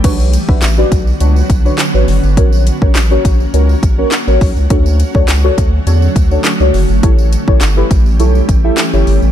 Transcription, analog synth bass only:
\new Staff \with { instrumentName = "Analog synth bass" } { \clef bass \time 4/4 \key b \minor \tempo 4 = 103 b,,8. b,,16 a,,8 b,,8 cis,8 b,,8 r16 a,,16 fis,,16 g,,16 | ais,,8. ais,,16 a,,8 ais,,8 cis,8 ais,,8 r16 a,,16 b,,16 cis,16 | d,8. d,16 cis,8 d,8 e,8 d,8 r16 cis,16 fis,,16 g,,16 | a,,8. a,,16 g,,8 a,,8 b,,8 a,,8 r16 g,,16 g,,16 a,,16 | }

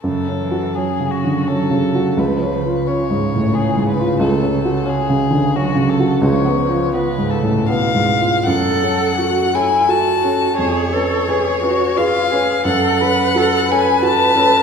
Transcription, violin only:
\new Staff \with { instrumentName = "Violin" } { \time 3/4 \key fis \minor \tempo 4 = 87 a'4 gis'8 fis'8 a'4 | b'4 cis''4 gis'8 b'8 | a'4 gis'4 fis'8 a'8 | cis''4 b'8 a'8 eis''4 |
fis''4. gis''8 a''4 | cis''2 eis''4 | fis''4. gis''8 a''4 | }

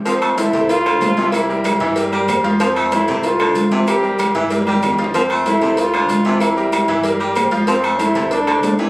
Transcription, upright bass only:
\new Staff \with { instrumentName = "Upright bass" } { \clef bass \time 4/4 \key f \major \tempo 4 = 189 r4. c,4. c,4~ | c,4. g,4. f,4~ | f,4. c,4. c,4~ | c,4. g,4. f,4~ |
f,4. c,4. c,4~ | c,4. g,4. f,4~ | f,4. c,4. c,4 | }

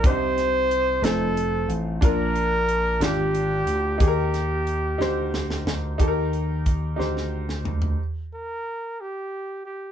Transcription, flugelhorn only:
\new Staff \with { instrumentName = "Flugelhorn" } { \time 6/8 \key ees \major \tempo 4. = 60 c''4. a'4 r8 | bes'4. g'4. | g'2~ g'8 r8 | r2. |
r8 bes'4 g'4 g'8 | }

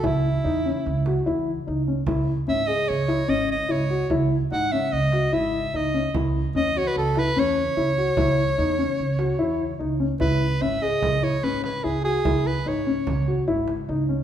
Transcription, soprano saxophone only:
\new Staff \with { instrumentName = "Soprano saxophone" } { \time 5/4 \key cis \minor \tempo 4 = 147 e'2. r2 | r4 e''8 dis''8 cis''4 dis''8 dis''8 cis''4 | r4 fis''8 e''8 dis''4 e''4 dis''4 | r4 dis''8 cis''16 b'16 a'8 b'8 cis''2~ |
cis''1 r4 | b'4 e''8 dis''4 cis''8 b'8 b'8 gis'8 gis'8~ | gis'8 b'8 cis''2 r2 | }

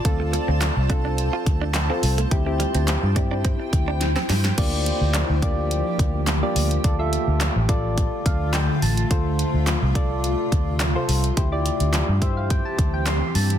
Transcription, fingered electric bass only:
\new Staff \with { instrumentName = "Fingered electric bass" } { \clef bass \time 4/4 \key f \major \tempo 4 = 106 d,8. d,8 c,4~ c,16 d,4 c,8 | d,8. d,8 g,4~ g,16 d,4 g,8 | d,8. d,8 d,4~ d,16 d,4 d,8 | d,8. d,8 a,,4~ a,,16 d,4 a,,8 |
d,8. d,8 c,4~ c,16 d,4 c,8 | d,8. d,8 g,4~ g,16 d,4 g,8 | }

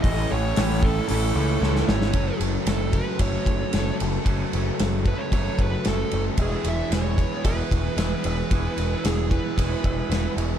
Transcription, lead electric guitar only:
\new Staff \with { instrumentName = "Lead electric guitar" } { \time 4/4 \key fis \minor \tempo 4 = 113 dis''8 cis''4 a'8 a'4. cis''8~ | cis''8 r8 a'8 b'8 cis''4. r8 | r4. b'16 cis''16 cis''8 b'8 a'8. r16 | gis'8 e''8 cis''4 b'4. b'8~ |
b'4 gis'8 b'2 r8 | }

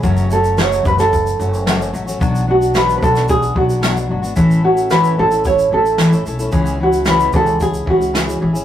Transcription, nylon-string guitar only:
\new Staff \with { instrumentName = "Nylon-string guitar" } { \time 4/4 \key b \dorian \tempo 4 = 111 r8 a'8 cis''8 b'16 a'4.~ a'16 r8 | r8 fis'8 b'16. b'32 a'8 gis'8 fis'4 r8 | r8 fis'8 b'8 a'8 cis''8 a'4 r8 | r8 fis'8 b'8 a'8 gis'8 fis'4 r8 | }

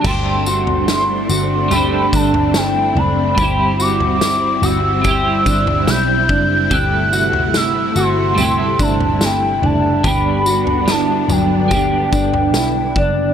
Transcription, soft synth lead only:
\new Staff \with { instrumentName = "Soft synth lead" } { \time 4/4 \key d \mixolydian \tempo 4 = 72 c'''2 b''8 a''8 g''8 b''8~ | b''8 d'''4 e'''4. g'''4 | fis'''4 e'''8 c'''4 a''8 g''8 a''8 | b''4 a''8 g''2 d''8 | }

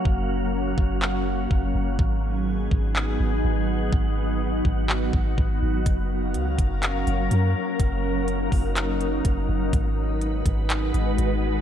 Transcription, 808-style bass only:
\new Staff \with { instrumentName = "808-style bass" } { \clef bass \time 4/4 \key gis \dorian \tempo 4 = 124 fis,,4. fis,,4. fis,,8 fis,,8 | gis,,4. gis,,4 gis,,8 gis,,4 | gis,,4. gis,,4 gis,,8 gis,,8 gis,,8 | fis,,4 cis,8 fis,,4 fis,,8 fis,8 r8 |
fis,,4. fis,,4. fis,,8 fis,,8 | gis,,4. gis,,4 gis,,8 gis,,4 | }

